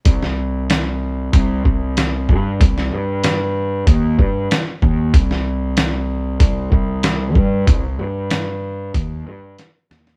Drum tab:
HH |x---x---x---x---|x---x---x---x---|x---x---x---x---|x---x---x---x---|
SD |-o--o-------o---|-o--o-------o---|-o--o-------o---|----o-------o-oo|
BD |o-------o-o---o-|o-------o-o---o-|o-------o-o---o-|o-------o-------|